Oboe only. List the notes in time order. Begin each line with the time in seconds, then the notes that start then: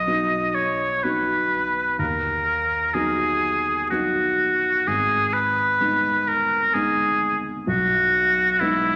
Already playing: D#5
0.55 C#5
1.03 B4
1.99 A#4
2.94 G#4
3.90 F#4
4.87 G#4
5.33 B4
6.28 A#4
6.74 G#4
7.68 F#4
8.59 E4